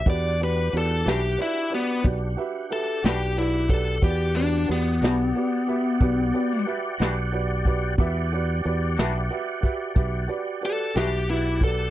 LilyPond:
<<
  \new Staff \with { instrumentName = "Tonewheel organ" } { \time 12/8 \key e \minor \tempo 4. = 61 <d' g' fis''>1. | <g' d'' fis''>1. | <g' d'' fis''>1. | }
  \new Staff \with { instrumentName = "Upright piano" } { \time 12/8 \key e \minor <fis' g' b' d''>8 <fis' g' b' d''>8 <fis' g' b' d''>8 <fis' g' b' e''>8 <fis' g' b' d''>8 <fis' g' b' d''>8 <fis' g' b' d''>8 <fis' g' b' e''>8 <fis' g' b' e''>8 <fis' g' b' d''>8 <fis' g' b' d''>8 <fis' g' b' d''>8 | <fis' g' b' d''>8 <fis' g' b' d''>8 <fis' g' b' d''>8 <fis' g' b' d''>8 <fis' g' b' d''>8 <fis' g' b' e''>8 <fis' g' b' d''>8 <fis' g' b' d''>8 <fis' g' b' e''>8 <fis' g' b' d''>8 <fis' g' b' d''>8 <fis' g' b' d''>8 | <fis' g' b' e''>8 <fis' g' b' d''>8 <fis' g' b' d''>8 <fis' g' b' e''>8 <fis' g' b' e''>8 <fis' g' b' e''>8 <fis' g' b' e''>8 <fis' g' b' d''>8 <fis' g' b' d''>8 <fis' g' b' e''>8 <fis' g' b' e''>8 <fis' g' b' d''>8 | }
  \new Staff \with { instrumentName = "Lead electric guitar" } { \time 12/8 \key e \minor d''8 b'8 a'8 g'8 e'8 b8 r4 a'8 g'8 e'8 a'8 | g'8 d'8 b2. r2 | r1 a'8 g'8 e'8 a'8 | }
  \new Staff \with { instrumentName = "Clean electric guitar" } { \time 12/8 \key e \minor r4. <e g d' fis'>8 r2 r8 <e g d' fis'>8 r4 | r4. <e g d' fis'>8 r2 r8 <e g d' fis'>8 r4 | r4. <e g d' fis'>8 r2 r8 <e g d' fis'>8 r4 | }
  \new Staff \with { instrumentName = "Fingered electric bass" } { \clef bass \time 12/8 \key e \minor e,4 e,8 b,,8 r4 b,,8 r4 b,,4. | e,4 e,8 b,,8 r4 b,,8 r4 b,,4. | e,4 e,8 b,,8 r4 b,,8 r4 b,,4. | }
  \new DrumStaff \with { instrumentName = "Drums" } \drummode { \time 12/8 <hh bd>8 hh8 hh8 <hh sn>8 hh8 hh8 <hh bd>8 hh8 hh8 <hh sn>8 hh8 <hh bd>8 | <hh bd>8 hh8 hh8 <hh sn>8 hh8 hh8 <hh bd>8 hh8 hh8 <hh sn>8 hh8 <hh bd>8 | <hh bd>8 hh8 hh8 <hh sn>8 hh8 <hh bd>8 <hh bd>8 hh8 hh8 <hh sn>8 hh8 <hh bd>8 | }
>>